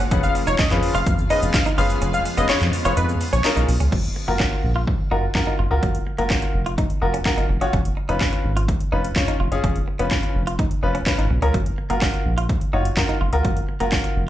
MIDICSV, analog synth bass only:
0, 0, Header, 1, 2, 480
1, 0, Start_track
1, 0, Key_signature, 6, "major"
1, 0, Tempo, 476190
1, 115, Time_signature, 4, 2, 24, 8
1, 14406, End_track
2, 0, Start_track
2, 0, Title_t, "Analog synth bass"
2, 0, Program_c, 0, 38
2, 115, Note_on_c, 0, 29, 118
2, 297, Note_off_c, 0, 29, 0
2, 475, Note_on_c, 0, 29, 103
2, 566, Note_off_c, 0, 29, 0
2, 595, Note_on_c, 0, 41, 49
2, 642, Note_off_c, 0, 41, 0
2, 714, Note_on_c, 0, 41, 97
2, 806, Note_off_c, 0, 41, 0
2, 954, Note_on_c, 0, 29, 93
2, 1045, Note_off_c, 0, 29, 0
2, 1073, Note_on_c, 0, 41, 102
2, 1256, Note_off_c, 0, 41, 0
2, 1434, Note_on_c, 0, 29, 95
2, 1526, Note_off_c, 0, 29, 0
2, 1794, Note_on_c, 0, 30, 97
2, 1977, Note_off_c, 0, 30, 0
2, 2034, Note_on_c, 0, 29, 101
2, 2217, Note_off_c, 0, 29, 0
2, 2393, Note_on_c, 0, 29, 105
2, 2485, Note_off_c, 0, 29, 0
2, 2514, Note_on_c, 0, 41, 49
2, 2562, Note_off_c, 0, 41, 0
2, 2634, Note_on_c, 0, 41, 101
2, 2726, Note_off_c, 0, 41, 0
2, 2874, Note_on_c, 0, 29, 90
2, 2965, Note_off_c, 0, 29, 0
2, 2994, Note_on_c, 0, 41, 110
2, 3177, Note_off_c, 0, 41, 0
2, 3354, Note_on_c, 0, 34, 100
2, 3446, Note_off_c, 0, 34, 0
2, 3594, Note_on_c, 0, 35, 96
2, 3686, Note_off_c, 0, 35, 0
2, 3714, Note_on_c, 0, 35, 102
2, 3806, Note_off_c, 0, 35, 0
2, 3835, Note_on_c, 0, 37, 95
2, 3926, Note_off_c, 0, 37, 0
2, 3954, Note_on_c, 0, 30, 100
2, 4137, Note_off_c, 0, 30, 0
2, 4314, Note_on_c, 0, 30, 99
2, 4497, Note_off_c, 0, 30, 0
2, 4675, Note_on_c, 0, 34, 99
2, 4948, Note_off_c, 0, 34, 0
2, 5154, Note_on_c, 0, 30, 89
2, 5337, Note_off_c, 0, 30, 0
2, 5393, Note_on_c, 0, 42, 98
2, 5485, Note_off_c, 0, 42, 0
2, 5635, Note_on_c, 0, 30, 93
2, 5726, Note_off_c, 0, 30, 0
2, 5755, Note_on_c, 0, 37, 89
2, 5846, Note_off_c, 0, 37, 0
2, 5874, Note_on_c, 0, 30, 102
2, 6057, Note_off_c, 0, 30, 0
2, 6235, Note_on_c, 0, 30, 101
2, 6417, Note_off_c, 0, 30, 0
2, 6595, Note_on_c, 0, 29, 98
2, 6869, Note_off_c, 0, 29, 0
2, 7075, Note_on_c, 0, 29, 94
2, 7257, Note_off_c, 0, 29, 0
2, 7434, Note_on_c, 0, 30, 87
2, 7526, Note_off_c, 0, 30, 0
2, 7554, Note_on_c, 0, 29, 96
2, 7646, Note_off_c, 0, 29, 0
2, 7674, Note_on_c, 0, 30, 82
2, 7766, Note_off_c, 0, 30, 0
2, 7795, Note_on_c, 0, 29, 111
2, 7977, Note_off_c, 0, 29, 0
2, 8154, Note_on_c, 0, 29, 102
2, 8337, Note_off_c, 0, 29, 0
2, 8514, Note_on_c, 0, 32, 88
2, 8788, Note_off_c, 0, 32, 0
2, 8995, Note_on_c, 0, 29, 96
2, 9177, Note_off_c, 0, 29, 0
2, 9233, Note_on_c, 0, 41, 117
2, 9325, Note_off_c, 0, 41, 0
2, 9474, Note_on_c, 0, 29, 95
2, 9566, Note_off_c, 0, 29, 0
2, 9594, Note_on_c, 0, 30, 86
2, 9685, Note_off_c, 0, 30, 0
2, 9714, Note_on_c, 0, 29, 108
2, 9897, Note_off_c, 0, 29, 0
2, 10074, Note_on_c, 0, 29, 94
2, 10257, Note_off_c, 0, 29, 0
2, 10435, Note_on_c, 0, 29, 94
2, 10708, Note_off_c, 0, 29, 0
2, 10914, Note_on_c, 0, 29, 93
2, 11097, Note_off_c, 0, 29, 0
2, 11275, Note_on_c, 0, 32, 79
2, 11366, Note_off_c, 0, 32, 0
2, 11395, Note_on_c, 0, 35, 99
2, 11486, Note_off_c, 0, 35, 0
2, 11515, Note_on_c, 0, 37, 85
2, 11606, Note_off_c, 0, 37, 0
2, 11635, Note_on_c, 0, 30, 102
2, 11817, Note_off_c, 0, 30, 0
2, 11995, Note_on_c, 0, 30, 98
2, 12177, Note_off_c, 0, 30, 0
2, 12355, Note_on_c, 0, 34, 103
2, 12629, Note_off_c, 0, 34, 0
2, 12836, Note_on_c, 0, 30, 88
2, 13018, Note_off_c, 0, 30, 0
2, 13073, Note_on_c, 0, 42, 102
2, 13165, Note_off_c, 0, 42, 0
2, 13315, Note_on_c, 0, 30, 90
2, 13406, Note_off_c, 0, 30, 0
2, 13435, Note_on_c, 0, 37, 89
2, 13526, Note_off_c, 0, 37, 0
2, 13555, Note_on_c, 0, 30, 104
2, 13737, Note_off_c, 0, 30, 0
2, 13915, Note_on_c, 0, 30, 96
2, 14097, Note_off_c, 0, 30, 0
2, 14276, Note_on_c, 0, 29, 93
2, 14406, Note_off_c, 0, 29, 0
2, 14406, End_track
0, 0, End_of_file